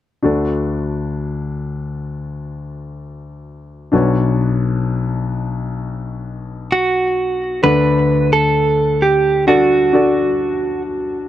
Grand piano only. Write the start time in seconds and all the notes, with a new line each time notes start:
0.23 D2 D3 D4 F#4 A4 D5
3.92 B1 B2 D4 F#4 B4 C#5
7.63 D2 D3 D4 A4 D5 F#5
9.47 D4 F#4 A4 D5
9.93 D4 F#4 A4 D5